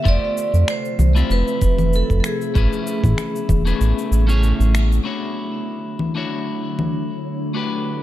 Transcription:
0.00 2.53 C3 medium
0.00 2.53 F3 medium
0.00 5.02 A3 medium
0.00 1.11 A3 medium
0.00 5.02 E5 medium
0.04 0.18 F1 loud
0.04 0.06 E4 medium
0.04 1.12 F4 medium
0.04 1.12 G4 medium
0.04 1.13 C5 loud
0.04 0.71 D5 loud
0.04 kick loud
0.04 cabasa soft
0.38 cabasa medium
0.54 0.64 F2 medium
0.54 cabasa soft
0.68 1.34 C5 loud
0.68 finger snap medium
0.68 cabasa soft
0.85 cabasa soft
0.99 1.23 C2 loud
0.99 low conga medium
0.99 cabasa medium
1.15 2.51 A3 medium
1.15 2.53 C4 medium
1.15 2.52 E4 medium
1.15 2.52 F4 medium
1.15 2.53 G4 medium
1.15 cabasa soft
1.30 1.43 F1 medium
1.30 1.96 B4 loud
1.30 cabasa soft
1.48 cabasa soft
1.62 2.03 F1 medium
1.62 kick loud
1.62 cabasa medium
1.78 low conga medium
1.78 cabasa soft
1.93 2.19 A4 medium
1.93 cabasa soft
2.10 2.21 F1 medium
2.10 kick medium
2.10 cabasa soft
2.20 2.25 A4 medium
2.20 finger snap medium
2.24 4.40 G#4 medium
2.24 cabasa medium
2.41 cabasa soft
2.54 2.68 A1 loud
2.54 5.03 C#3 medium
2.54 3.62 A3 medium
2.54 5.03 B3 medium
2.54 3.62 C#4 medium
2.54 3.62 E4 medium
2.54 5.03 G#4 medium
2.54 3.63 G#4 medium
2.54 3.63 B4 medium
2.54 kick loud
2.54 cabasa soft
2.73 cabasa soft
2.87 cabasa medium
3.03 3.14 A2 medium
3.03 kick medium
3.03 low conga medium
3.03 cabasa soft
3.18 finger snap medium
3.18 cabasa soft
3.36 cabasa soft
3.49 3.73 E1 loud
3.49 kick loud
3.49 low conga medium
3.49 cabasa medium
3.65 4.25 A3 medium
3.65 4.25 C#4 medium
3.65 4.26 E4 medium
3.65 4.26 G#4 medium
3.65 4.26 B4 medium
3.65 cabasa soft
3.81 3.93 A1 medium
3.81 cabasa soft
3.99 cabasa soft
4.11 4.53 A1 medium
4.11 cabasa medium
4.27 5.01 A3 loud
4.27 5.02 C#4 medium
4.27 5.02 E4 medium
4.27 5.02 G#4 medium
4.27 5.03 C#5 loud
4.27 cabasa soft
4.43 cabasa soft
4.60 5.00 A1 medium
4.60 cabasa soft
4.75 finger snap medium
4.75 cabasa medium
4.92 cabasa soft
5.03 7.53 D3 medium
5.03 7.53 F#3 medium
5.03 6.12 A3 medium
5.03 8.03 A3 medium
5.03 6.12 D4 medium
5.03 6.12 E4 medium
5.03 7.53 E4 medium
5.03 6.13 F#4 medium
5.03 7.53 C#5 medium
5.03 6.13 C#5 medium
5.99 low conga medium
6.15 7.51 A3 medium
6.15 7.52 D4 medium
6.15 7.52 E4 medium
6.15 7.53 F#4 medium
6.15 7.53 C#5 medium
6.79 low conga medium
7.54 8.03 A3 medium
7.54 8.03 D4 medium
7.54 8.03 F#4 medium
7.54 8.03 G4 medium
7.54 8.03 B4 medium

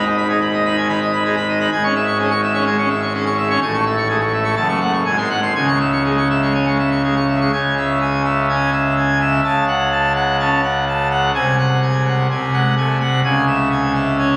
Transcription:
0.00 1.67 G#1 medium
0.00 1.68 G#2 medium
0.05 0.16 D#5 medium
0.17 0.28 B5 medium
0.29 0.40 D#4 medium
0.29 0.40 G#4 medium
0.41 0.52 B5 medium
0.53 0.64 D#5 medium
0.65 0.76 D#4 medium
0.65 0.76 B5 medium
0.77 0.88 D#3 medium
0.77 0.88 G#5 medium
0.89 0.99 D#4 medium
0.89 1.00 B5 medium
1.01 1.12 D#5 medium
1.13 1.23 B5 medium
1.25 1.35 D#4 medium
1.25 1.35 G#4 medium
1.37 1.47 B5 medium
1.49 1.59 D#5 medium
1.60 1.70 D#4 medium
1.60 1.70 B5 medium
1.72 3.57 G#1 medium
1.72 3.58 G#2 medium
1.72 1.83 G#5 medium
1.84 1.94 C#4 medium
1.84 1.94 C#6 medium
1.95 2.06 E5 medium
2.07 2.18 C#6 medium
2.19 2.29 C#4 medium
2.19 2.29 G#4 medium
2.30 2.41 C#6 medium
2.43 2.53 E5 medium
2.54 2.65 C#4 medium
2.54 2.65 C#6 medium
2.66 2.77 G#3 medium
2.66 2.77 G#5 medium
2.78 2.89 C#4 medium
2.78 2.89 C#6 medium
2.90 3.01 E5 medium
3.02 3.13 C#6 medium
3.14 3.24 C#4 medium
3.14 3.24 G#4 medium
3.26 3.37 C#6 medium
3.38 3.48 E5 medium
3.50 3.60 C#4 medium
3.50 3.60 C#6 medium
3.62 4.54 A1 medium
3.62 4.54 A2 medium
3.62 3.72 G#5 medium
3.74 3.84 A3 medium
3.74 3.84 C#6 loud
3.86 3.96 E5 medium
3.98 4.08 C#6 medium
4.09 4.20 A3 medium
4.09 4.20 G#4 medium
4.21 4.32 C#6 medium
4.33 4.43 E5 medium
4.44 4.55 A3 medium
4.44 4.55 C#6 medium
4.56 5.04 F#1 medium
4.56 5.04 F#2 medium
4.56 4.67 A5 medium
4.69 4.80 A3 medium
4.69 4.80 C#6 loud
4.81 4.92 F#5 medium
4.93 5.03 C#6 medium
5.05 5.53 G#1 medium
5.05 5.53 G#2 medium
5.05 5.16 G#5 medium
5.17 5.28 G#3 medium
5.17 5.28 C6 medium
5.30 5.41 F#5 medium
5.42 5.53 C6 medium
5.55 7.49 C#2 medium
5.55 7.49 C#3 medium
5.55 5.66 G#5 medium
5.68 5.79 G#3 medium
5.68 5.79 C#6 medium
5.80 5.91 E5 medium
5.92 6.03 C#6 medium
6.04 6.16 G#3 medium
6.04 6.16 G#4 medium
6.17 6.28 C#6 medium
6.30 6.41 E5 medium
6.42 6.53 G#3 medium
6.42 6.53 C#6 medium
6.54 6.65 C#4 medium
6.54 6.65 G#5 medium
6.66 6.78 G#3 medium
6.66 6.77 C#6 medium
6.79 6.90 E5 medium
6.91 7.02 C#6 medium
7.03 7.15 G#3 medium
7.03 7.15 G#4 medium
7.16 7.27 C#6 medium
7.28 7.39 E5 medium
7.41 7.51 G#3 medium
7.41 7.51 C#6 medium
7.53 9.40 C#2 medium
7.53 9.40 C#3 medium
7.53 7.74 G#5 loud
7.77 7.98 E5 medium
8.01 8.22 G#5 medium
8.25 8.46 E5 medium
8.49 8.70 C#4 medium
8.49 8.70 G#5 medium
8.72 8.94 E5 medium
8.97 9.18 G#5 medium
9.21 9.41 E5 medium
9.44 11.31 C#2 medium
9.44 11.31 C#3 medium
9.44 9.65 A5 loud
9.67 9.89 F#5 medium
9.92 10.13 A5 medium
10.15 10.37 F#5 medium
10.40 10.61 C#4 medium
10.40 10.61 A5 medium
10.63 10.85 F#5 medium
10.87 11.08 A5 medium
11.11 11.31 F#5 medium
11.34 12.28 C2 medium
11.34 12.28 C3 medium
11.34 11.56 G#5 loud
11.58 11.80 F#5 medium
11.82 12.03 G#5 medium
12.06 12.27 F#5 medium
12.30 13.21 C2 medium
12.30 13.21 C3 medium
12.30 12.51 G#5 medium
12.53 12.74 G#3 medium
12.53 12.74 F#5 medium
12.77 12.97 A3 medium
12.77 12.98 G#5 medium
13.00 13.20 F#5 medium
13.24 14.37 C#2 medium
13.24 14.37 C#3 medium
13.24 13.45 G#5 loud
13.47 13.68 E5 medium
13.71 13.92 G#5 medium
13.94 14.16 E5 medium
14.18 14.37 C#4 medium
14.18 14.37 G#5 medium

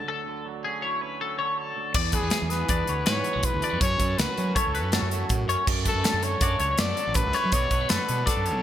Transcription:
0.00 0.26 D3 medium
0.00 0.44 F#3 medium
0.08 1.75 D2 medium
0.08 0.45 A4 medium
0.27 1.38 D3 soft
0.45 1.20 F#3 medium
0.65 1.01 C#4 medium
0.65 0.83 G#4 medium
0.82 1.93 E4 soft
0.82 1.01 C#5 medium
1.01 1.93 C#4 medium
1.01 1.20 B4 medium
1.21 1.96 F#3 medium
1.21 1.38 A4 medium
1.39 2.32 D3 medium
1.39 1.58 C#5 medium
1.58 1.95 A4 medium
1.76 1.95 D2 medium
1.94 2.16 E2 medium
1.94 3.42 E2 medium
1.94 2.13 D5 medium
1.94 kick loud
1.94 crash medium
2.12 2.23 A3 medium
2.12 2.52 G#4 loud
2.12 2.32 B4 medium
2.12 kick medium
2.12 closed hi-hat medium
2.22 2.30 E2 medium
2.22 2.49 B3 medium
2.30 3.04 E3 medium
2.30 2.69 G#4 medium
2.30 snare loud
2.30 closed hi-hat medium
2.42 2.63 E2 medium
2.50 2.85 B3 medium
2.50 3.11 B4 loud
2.50 snare soft
2.50 closed hi-hat medium
2.69 2.83 E2 medium
2.69 3.81 D4 medium
2.69 2.89 D5 medium
2.69 kick medium
2.69 closed hi-hat medium
2.87 3.02 D2 medium
2.87 3.61 B3 medium
2.87 3.06 C#5 medium
2.87 closed hi-hat medium
3.05 3.21 G#2 loud
3.05 3.78 E3 medium
3.05 3.44 B4 medium
3.05 snare loud
3.05 closed hi-hat medium
3.09 3.47 C#5 loud
3.24 3.33 F#3 medium
3.24 closed hi-hat medium
3.33 3.49 B1 medium
3.33 3.80 G#3 medium
3.43 3.78 E2 medium
3.43 3.81 B4 loud
3.43 kick loud
3.43 closed hi-hat medium
3.54 3.61 D2 medium
3.61 3.70 A3 medium
3.61 3.80 D5 medium
3.61 closed hi-hat medium
3.70 3.79 F2 medium
3.70 3.80 B3 medium
3.80 5.29 F#2 medium
3.80 3.95 F#2 loud
3.80 4.00 C#5 medium
3.80 4.20 C#5 loud
3.80 kick loud
3.80 closed hi-hat medium
3.99 4.14 F#2 medium
3.99 4.38 C#4 medium
3.99 4.19 A4 medium
3.99 kick medium
3.99 closed hi-hat medium
4.18 4.25 C#2 medium
4.18 4.92 F#3 medium
4.18 4.56 F#4 medium
4.18 4.57 B4 loud
4.18 snare loud
4.18 closed hi-hat loud
4.38 4.52 F#3 medium
4.38 4.75 C#4 medium
4.38 closed hi-hat medium
4.55 5.65 E4 medium
4.55 4.92 A4 medium
4.55 4.74 C#5 medium
4.55 kick medium
4.55 closed hi-hat loud
4.66 4.83 C#2 medium
4.74 5.49 C#4 medium
4.74 4.93 B4 medium
4.74 closed hi-hat medium
4.83 4.97 F#2 medium
4.92 6.03 F#3 medium
4.92 5.45 F#4 medium
4.92 5.30 A4 medium
4.92 snare loud
4.92 closed hi-hat medium
5.02 5.23 F#2 medium
5.11 5.86 A3 medium
5.11 closed hi-hat medium
5.29 5.65 F#2 medium
5.29 5.44 A2 medium
5.29 kick medium
5.29 closed hi-hat medium
5.48 5.55 F#2 medium
5.48 5.65 C#4 medium
5.48 5.67 C#5 medium
5.48 closed hi-hat medium
5.67 5.88 F#2 loud
5.67 7.15 F#2 medium
5.67 5.86 D5 medium
5.67 kick loud
5.67 crash medium
5.85 6.23 A3 medium
5.85 6.25 A4 loud
5.85 6.04 B4 medium
5.85 kick medium
5.85 closed hi-hat medium
5.95 6.02 F#2 medium
6.03 6.77 D3 medium
6.03 6.41 A4 medium
6.03 snare loud
6.03 closed hi-hat medium
6.13 6.34 F#2 medium
6.23 6.58 A3 medium
6.23 6.82 C#5 loud
6.23 closed hi-hat medium
6.41 6.55 F#2 medium
6.41 7.50 F#4 medium
6.41 6.60 D5 medium
6.41 kick loud
6.41 closed hi-hat medium
6.58 6.74 C#2 medium
6.58 7.33 A3 medium
6.58 6.79 C#5 medium
6.58 closed hi-hat medium
6.78 6.93 F#2 loud
6.78 7.88 D3 medium
6.78 7.16 A4 medium
6.78 7.17 D5 loud
6.78 snare loud
6.78 closed hi-hat loud
6.97 8.62 F#3 medium
6.97 closed hi-hat medium
7.07 7.21 A1 medium
7.14 7.51 F#2 medium
7.14 7.55 B4 loud
7.14 kick loud
7.14 closed hi-hat loud
7.26 7.32 C#2 loud
7.33 7.70 A3 medium
7.33 7.54 C#5 medium
7.33 snare soft
7.33 closed hi-hat medium
7.45 7.51 F#3 medium
7.52 7.67 B1 loud
7.52 7.89 B2 medium
7.52 7.92 C#5 loud
7.52 7.71 D5 medium
7.52 kick medium
7.52 closed hi-hat medium
7.71 7.85 B1 medium
7.71 7.81 A3 medium
7.71 7.89 B4 medium
7.71 kick medium
7.71 closed hi-hat medium
7.81 8.08 B3 soft
7.89 7.97 F#2 loud
7.89 8.62 D3 medium
7.89 8.27 A4 medium
7.89 8.29 B4 loud
7.89 snare loud
7.89 closed hi-hat loud
8.09 8.23 B2 medium
8.09 8.45 B3 medium
8.09 closed hi-hat medium
8.26 8.62 D4 medium
8.26 8.62 A4 loud
8.26 8.45 D5 medium
8.26 kick medium
8.26 snare soft
8.26 closed hi-hat medium
8.37 8.55 F#2 medium
8.45 8.62 B3 medium
8.45 8.62 C#5 medium
8.45 closed hi-hat medium
8.55 8.62 B1 medium

